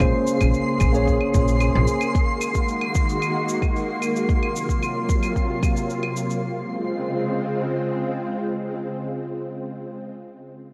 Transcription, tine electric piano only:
0, 0, Header, 1, 2, 480
1, 0, Start_track
1, 0, Key_signature, -5, "major"
1, 0, Tempo, 535714
1, 6, Time_signature, 4, 2, 24, 8
1, 9619, End_track
2, 0, Start_track
2, 0, Title_t, "Tine electric piano"
2, 0, Program_c, 0, 4
2, 0, Control_c, 0, 64, 127
2, 0, Note_on_c, 0, 58, 86
2, 0, Note_on_c, 0, 61, 79
2, 5, Note_on_c, 0, 68, 76
2, 13, Note_on_c, 0, 72, 93
2, 19, Control_c, 0, 64, 0
2, 191, Control_c, 0, 64, 127
2, 809, Note_off_c, 0, 58, 0
2, 814, Note_off_c, 0, 61, 0
2, 818, Note_off_c, 0, 68, 0
2, 822, Note_off_c, 0, 72, 0
2, 828, Note_on_c, 0, 58, 81
2, 841, Note_on_c, 0, 61, 73
2, 847, Note_on_c, 0, 68, 78
2, 860, Note_on_c, 0, 73, 86
2, 1888, Note_off_c, 0, 58, 0
2, 1894, Note_off_c, 0, 61, 0
2, 1898, Note_off_c, 0, 68, 0
2, 1904, Note_off_c, 0, 73, 0
2, 1937, Control_c, 0, 64, 0
2, 9619, End_track
0, 0, End_of_file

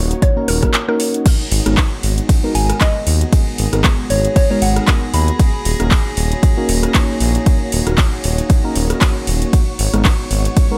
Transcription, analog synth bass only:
0, 0, Header, 1, 2, 480
1, 0, Start_track
1, 0, Key_signature, 5, "minor"
1, 0, Tempo, 517241
1, 1166, Time_signature, 4, 2, 24, 8
1, 10003, End_track
2, 0, Start_track
2, 0, Title_t, "Analog synth bass"
2, 0, Program_c, 0, 38
2, 0, Note_on_c, 0, 27, 96
2, 123, Note_off_c, 0, 27, 0
2, 447, Note_on_c, 0, 27, 103
2, 603, Note_off_c, 0, 27, 0
2, 1407, Note_on_c, 0, 32, 97
2, 1488, Note_off_c, 0, 32, 0
2, 1542, Note_on_c, 0, 32, 88
2, 1675, Note_off_c, 0, 32, 0
2, 1887, Note_on_c, 0, 32, 94
2, 2043, Note_off_c, 0, 32, 0
2, 2367, Note_on_c, 0, 32, 104
2, 2523, Note_off_c, 0, 32, 0
2, 2847, Note_on_c, 0, 39, 107
2, 3003, Note_off_c, 0, 39, 0
2, 3327, Note_on_c, 0, 32, 100
2, 3408, Note_off_c, 0, 32, 0
2, 3462, Note_on_c, 0, 32, 91
2, 3595, Note_off_c, 0, 32, 0
2, 3806, Note_on_c, 0, 32, 97
2, 3963, Note_off_c, 0, 32, 0
2, 4287, Note_on_c, 0, 32, 106
2, 4443, Note_off_c, 0, 32, 0
2, 4766, Note_on_c, 0, 39, 107
2, 4923, Note_off_c, 0, 39, 0
2, 5247, Note_on_c, 0, 27, 100
2, 5328, Note_off_c, 0, 27, 0
2, 5381, Note_on_c, 0, 27, 91
2, 5514, Note_off_c, 0, 27, 0
2, 5727, Note_on_c, 0, 27, 99
2, 5883, Note_off_c, 0, 27, 0
2, 6207, Note_on_c, 0, 27, 110
2, 6363, Note_off_c, 0, 27, 0
2, 6687, Note_on_c, 0, 34, 108
2, 6843, Note_off_c, 0, 34, 0
2, 7166, Note_on_c, 0, 27, 100
2, 7248, Note_off_c, 0, 27, 0
2, 7302, Note_on_c, 0, 27, 93
2, 7435, Note_off_c, 0, 27, 0
2, 7647, Note_on_c, 0, 27, 96
2, 7803, Note_off_c, 0, 27, 0
2, 8127, Note_on_c, 0, 27, 105
2, 8283, Note_off_c, 0, 27, 0
2, 8606, Note_on_c, 0, 27, 93
2, 8763, Note_off_c, 0, 27, 0
2, 9086, Note_on_c, 0, 32, 100
2, 9167, Note_off_c, 0, 32, 0
2, 9221, Note_on_c, 0, 32, 90
2, 9354, Note_off_c, 0, 32, 0
2, 9566, Note_on_c, 0, 32, 95
2, 9723, Note_off_c, 0, 32, 0
2, 10003, End_track
0, 0, End_of_file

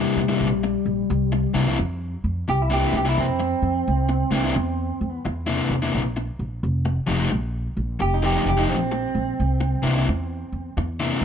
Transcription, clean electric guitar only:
0, 0, Header, 1, 2, 480
1, 0, Start_track
1, 0, Tempo, 690449
1, 768, Time_signature, 4, 2, 24, 8
1, 7819, End_track
2, 0, Start_track
2, 0, Title_t, "Clean electric guitar"
2, 0, Program_c, 0, 27
2, 0, Note_on_c, 0, 55, 94
2, 1229, Note_off_c, 0, 55, 0
2, 1735, Note_on_c, 0, 67, 86
2, 1820, Note_off_c, 0, 67, 0
2, 1820, Note_on_c, 0, 64, 95
2, 1882, Note_off_c, 0, 64, 0
2, 1900, Note_on_c, 0, 67, 94
2, 1987, Note_on_c, 0, 64, 82
2, 2024, Note_off_c, 0, 64, 0
2, 2039, Note_off_c, 0, 67, 0
2, 2064, Note_on_c, 0, 67, 94
2, 2144, Note_off_c, 0, 67, 0
2, 2147, Note_on_c, 0, 64, 81
2, 2206, Note_off_c, 0, 64, 0
2, 2224, Note_on_c, 0, 60, 105
2, 3631, Note_off_c, 0, 60, 0
2, 5573, Note_on_c, 0, 67, 95
2, 5659, Note_on_c, 0, 63, 81
2, 5672, Note_off_c, 0, 67, 0
2, 5722, Note_off_c, 0, 63, 0
2, 5739, Note_on_c, 0, 67, 81
2, 5814, Note_on_c, 0, 63, 99
2, 5857, Note_off_c, 0, 63, 0
2, 5879, Note_off_c, 0, 67, 0
2, 5898, Note_on_c, 0, 67, 90
2, 5974, Note_on_c, 0, 63, 78
2, 5994, Note_off_c, 0, 67, 0
2, 6041, Note_off_c, 0, 63, 0
2, 6041, Note_on_c, 0, 60, 110
2, 7456, Note_off_c, 0, 60, 0
2, 7819, End_track
0, 0, End_of_file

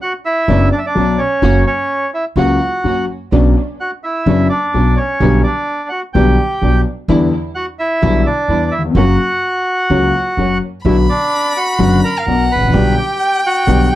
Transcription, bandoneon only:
0, 0, Header, 1, 2, 480
1, 0, Start_track
1, 0, Key_signature, 2, "minor"
1, 0, Tempo, 470588
1, 1458, Time_signature, 4, 2, 24, 8
1, 14231, End_track
2, 0, Start_track
2, 0, Title_t, "Bandoneon"
2, 0, Program_c, 0, 23
2, 18, Note_on_c, 0, 78, 81
2, 28, Note_on_c, 0, 66, 62
2, 127, Note_off_c, 0, 78, 0
2, 135, Note_off_c, 0, 66, 0
2, 259, Note_on_c, 0, 76, 89
2, 261, Note_on_c, 0, 64, 66
2, 703, Note_off_c, 0, 76, 0
2, 705, Note_off_c, 0, 64, 0
2, 736, Note_on_c, 0, 74, 72
2, 744, Note_on_c, 0, 62, 57
2, 798, Note_on_c, 0, 76, 66
2, 807, Note_off_c, 0, 62, 0
2, 811, Note_off_c, 0, 74, 0
2, 875, Note_off_c, 0, 76, 0
2, 879, Note_on_c, 0, 74, 74
2, 884, Note_on_c, 0, 62, 58
2, 1196, Note_off_c, 0, 62, 0
2, 1203, Note_on_c, 0, 73, 70
2, 1210, Note_on_c, 0, 61, 58
2, 1227, Note_off_c, 0, 74, 0
2, 1661, Note_off_c, 0, 61, 0
2, 1686, Note_off_c, 0, 73, 0
2, 1696, Note_on_c, 0, 61, 51
2, 1701, Note_on_c, 0, 73, 70
2, 2143, Note_off_c, 0, 61, 0
2, 2145, Note_off_c, 0, 73, 0
2, 2182, Note_on_c, 0, 64, 54
2, 2189, Note_on_c, 0, 76, 70
2, 2289, Note_off_c, 0, 64, 0
2, 2295, Note_off_c, 0, 76, 0
2, 2427, Note_on_c, 0, 78, 68
2, 2436, Note_on_c, 0, 66, 54
2, 3111, Note_off_c, 0, 78, 0
2, 3116, Note_off_c, 0, 66, 0
2, 3878, Note_on_c, 0, 78, 66
2, 3885, Note_on_c, 0, 66, 53
2, 3987, Note_off_c, 0, 78, 0
2, 3992, Note_off_c, 0, 66, 0
2, 4116, Note_on_c, 0, 76, 72
2, 4127, Note_on_c, 0, 64, 54
2, 4564, Note_off_c, 0, 76, 0
2, 4570, Note_off_c, 0, 64, 0
2, 4583, Note_on_c, 0, 74, 70
2, 4601, Note_on_c, 0, 62, 58
2, 5046, Note_off_c, 0, 62, 0
2, 5066, Note_on_c, 0, 73, 65
2, 5086, Note_off_c, 0, 74, 0
2, 5093, Note_on_c, 0, 61, 55
2, 5518, Note_off_c, 0, 73, 0
2, 5532, Note_off_c, 0, 61, 0
2, 5543, Note_on_c, 0, 74, 71
2, 5571, Note_on_c, 0, 62, 60
2, 5995, Note_off_c, 0, 74, 0
2, 6009, Note_on_c, 0, 78, 76
2, 6010, Note_off_c, 0, 62, 0
2, 6035, Note_on_c, 0, 66, 61
2, 6123, Note_off_c, 0, 78, 0
2, 6143, Note_off_c, 0, 66, 0
2, 6256, Note_on_c, 0, 79, 77
2, 6279, Note_on_c, 0, 67, 59
2, 6940, Note_off_c, 0, 79, 0
2, 6952, Note_off_c, 0, 67, 0
2, 7702, Note_on_c, 0, 78, 75
2, 7712, Note_on_c, 0, 66, 62
2, 7809, Note_off_c, 0, 78, 0
2, 7817, Note_off_c, 0, 66, 0
2, 7946, Note_on_c, 0, 76, 87
2, 7955, Note_on_c, 0, 64, 66
2, 8391, Note_off_c, 0, 64, 0
2, 8425, Note_on_c, 0, 74, 78
2, 8434, Note_off_c, 0, 76, 0
2, 8434, Note_on_c, 0, 62, 62
2, 8869, Note_off_c, 0, 62, 0
2, 8888, Note_on_c, 0, 76, 73
2, 8900, Note_on_c, 0, 64, 55
2, 8912, Note_off_c, 0, 74, 0
2, 8997, Note_off_c, 0, 76, 0
2, 9006, Note_off_c, 0, 64, 0
2, 9147, Note_on_c, 0, 78, 92
2, 9149, Note_on_c, 0, 66, 74
2, 10791, Note_off_c, 0, 78, 0
2, 10792, Note_off_c, 0, 66, 0
2, 11071, Note_on_c, 0, 76, 69
2, 11082, Note_on_c, 0, 64, 56
2, 11178, Note_off_c, 0, 76, 0
2, 11187, Note_off_c, 0, 64, 0
2, 11314, Note_on_c, 0, 74, 69
2, 11324, Note_on_c, 0, 62, 56
2, 11766, Note_off_c, 0, 62, 0
2, 11797, Note_on_c, 0, 78, 78
2, 11803, Note_on_c, 0, 66, 64
2, 11808, Note_off_c, 0, 74, 0
2, 12244, Note_off_c, 0, 78, 0
2, 12246, Note_off_c, 0, 66, 0
2, 12278, Note_on_c, 0, 82, 77
2, 12290, Note_on_c, 0, 70, 67
2, 12728, Note_off_c, 0, 70, 0
2, 12768, Note_on_c, 0, 83, 91
2, 12769, Note_off_c, 0, 82, 0
2, 12772, Note_on_c, 0, 71, 65
2, 13204, Note_off_c, 0, 83, 0
2, 13206, Note_off_c, 0, 71, 0
2, 13233, Note_on_c, 0, 79, 80
2, 13246, Note_on_c, 0, 67, 61
2, 13685, Note_off_c, 0, 67, 0
2, 13726, Note_off_c, 0, 79, 0
2, 13731, Note_on_c, 0, 78, 79
2, 13732, Note_on_c, 0, 66, 63
2, 14167, Note_off_c, 0, 66, 0
2, 14213, Note_off_c, 0, 78, 0
2, 14231, End_track
0, 0, End_of_file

